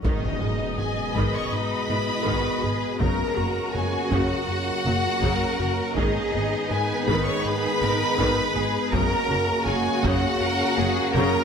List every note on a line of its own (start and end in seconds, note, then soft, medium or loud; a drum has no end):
0.04 0.12 G#1 medium
0.04 0.27 G#2 medium
0.04 2.97 B2 medium
0.04 0.39 D#3 medium
0.04 0.27 G#3 medium
0.04 2.97 G#3 medium
0.04 3.71 G#3 medium
0.04 2.97 B3 medium
0.04 0.75 D#4 medium
0.04 2.97 G#4 medium
0.04 2.97 B4 medium
0.04 2.97 D#5 medium
0.04 0.75 D#5 medium
0.04 taiko medium
0.04 impact medium
0.41 0.49 G#1 soft
0.41 0.64 G#2 medium
0.41 0.49 G#3 soft
0.41 0.63 G#4 medium
0.78 0.86 G#1 soft
0.78 1.01 G#2 medium
0.78 0.86 D#3 soft
0.78 1.01 G#4 medium
0.78 1.16 G#4 medium
0.78 1.16 G#5 medium
1.15 1.23 G#1 medium
1.15 1.38 G#2 medium
1.15 1.50 D#3 medium
1.15 1.37 G#3 medium
1.15 1.34 B4 medium
1.15 1.34 B5 medium
1.15 taiko medium
1.34 1.53 C#5 medium
1.34 1.53 C#6 medium
1.52 1.75 G#2 medium
1.52 1.87 D#4 medium
1.52 3.01 B4 medium
1.52 3.00 B5 medium
1.89 1.97 G#1 soft
1.89 2.12 G#2 medium
1.89 1.97 D#3 soft
1.89 2.12 B3 medium
1.89 2.27 E4 medium
2.25 2.35 G#1 medium
2.25 2.49 G#2 medium
2.25 2.61 D#3 medium
2.25 2.49 G#3 medium
2.25 2.64 F#4 medium
2.25 taiko medium
2.63 2.72 G#1 soft
2.63 2.86 G#2 medium
2.63 2.71 G#3 soft
2.63 3.01 G#4 medium
2.63 2.86 G#4 medium
3.00 3.09 F#1 medium
3.00 3.23 F#2 medium
3.00 3.35 C#3 medium
3.00 5.93 C#3 medium
3.00 3.23 F#3 medium
3.00 5.97 A#3 medium
3.00 5.98 A#3 medium
3.00 5.97 C#4 medium
3.00 5.93 F#4 medium
3.00 3.37 A#4 medium
3.00 5.97 A#4 medium
3.00 3.74 A#4 medium
3.00 5.94 A#4 medium
3.00 5.97 C#5 medium
3.00 3.74 A#5 medium
3.00 taiko medium
3.37 3.46 F#1 medium
3.37 3.60 F#2 medium
3.37 3.45 A#3 medium
3.37 3.60 F#4 medium
3.37 5.23 F#4 medium
3.74 3.83 F#1 soft
3.74 3.97 F#2 medium
3.74 3.82 F#3 soft
3.74 5.98 F#3 medium
3.74 3.97 F#4 medium
3.74 4.12 G#4 medium
3.74 4.12 G#5 medium
4.11 4.19 F#1 medium
4.11 4.34 F#2 medium
4.11 4.46 C#3 medium
4.11 4.34 F#3 medium
4.11 5.98 F#4 medium
4.11 5.97 F#5 loud
4.11 taiko medium
4.49 4.71 F#2 medium
4.85 4.94 F#1 medium
4.85 5.08 F#2 medium
4.85 4.94 F#3 medium
4.85 5.08 A#3 medium
4.85 taiko mid soft
5.22 5.31 F#1 medium
5.22 5.45 F#2 medium
5.22 5.57 C#3 medium
5.22 5.45 F#3 medium
5.22 5.96 A#4 medium
5.22 taiko medium
5.59 5.68 F#1 medium
5.59 5.82 F#2 medium
5.59 5.68 A#3 medium
5.59 5.82 F#4 medium
5.96 6.05 G#1 medium
5.96 6.19 G#2 medium
5.96 6.32 D#3 medium
5.96 8.77 D#3 medium
5.96 6.19 G#3 medium
5.96 8.94 G#3 medium
5.96 8.77 G#3 medium
5.96 8.77 B3 medium
5.96 8.94 B3 medium
5.96 6.70 D#4 medium
5.96 8.94 D#4 medium
5.96 8.77 G#4 medium
5.96 6.71 G#4 medium
5.96 8.94 G#4 medium
5.96 6.70 D#5 medium
5.96 8.94 D#5 medium
5.96 taiko medium
6.34 6.42 G#1 medium
6.34 6.56 G#2 medium
6.34 6.42 B3 soft
6.34 6.56 G#4 medium
6.71 6.79 G#1 medium
6.71 6.93 G#2 medium
6.71 6.79 G#3 medium
6.71 6.93 G#4 medium
6.71 7.08 G#4 medium
6.71 7.45 B4 medium
6.71 7.08 G#5 medium
7.07 7.16 G#1 medium
7.07 7.30 G#2 medium
7.07 7.43 D#3 medium
7.07 7.30 G#3 medium
7.07 7.26 B4 medium
7.07 7.26 B5 medium
7.07 taiko medium
7.26 7.45 C#5 medium
7.26 7.45 C#6 medium
7.44 7.68 G#2 medium
7.44 7.82 G#4 medium
7.44 8.93 B4 loud
7.44 8.93 B5 loud
7.82 7.90 G#1 medium
7.82 8.04 G#2 medium
7.82 7.90 G#3 medium
7.82 8.05 B3 medium
7.82 8.20 A#4 medium
7.82 taiko mid soft
8.18 8.27 G#1 medium
8.18 8.41 G#2 medium
8.18 8.54 D#3 medium
8.18 8.42 G#3 loud
8.18 8.56 B4 medium
8.18 taiko medium
8.55 8.64 G#1 medium
8.55 8.78 G#2 medium
8.55 8.63 B3 medium
8.55 8.93 G#4 medium
8.55 8.79 G#4 medium
8.92 9.01 F#1 medium
8.92 9.15 F#2 loud
8.92 9.27 C#3 medium
8.92 11.44 C#3 medium
8.92 9.16 F#3 medium
8.92 11.44 A#3 medium
8.92 11.44 C#4 medium
8.92 11.44 F#4 medium
8.92 9.67 A#4 loud
8.92 11.44 A#4 medium
8.92 9.68 A#4 medium
8.92 11.44 F#5 medium
8.92 9.66 A#5 loud
8.92 taiko loud
9.30 9.38 F#1 medium
9.30 9.52 F#2 medium
9.30 9.38 A#3 medium
9.30 9.53 F#4 medium
9.66 9.75 F#1 medium
9.66 9.89 F#2 medium
9.66 9.76 F#3 medium
9.66 10.40 F#4 medium
9.66 9.90 F#4 medium
9.66 10.05 G#4 medium
9.66 10.04 G#5 loud
10.03 10.12 F#1 medium
10.03 10.26 F#2 medium
10.03 10.39 C#3 loud
10.03 10.27 F#3 loud
10.03 11.13 F#4 loud
10.03 11.15 F#5 loud
10.03 taiko medium
10.40 10.63 F#2 medium
10.40 10.79 A#4 medium
10.78 10.86 F#1 medium
10.78 11.00 F#2 medium
10.78 10.86 F#3 medium
10.78 11.01 A#3 medium
10.78 11.16 G#4 medium
10.78 taiko low-mid medium
11.15 11.23 F#1 medium
11.15 11.37 F#2 medium
11.15 11.44 C#3 loud
11.15 11.38 F#3 medium
11.15 11.44 A#4 medium
11.15 11.44 A#5 loud
11.15 taiko mid medium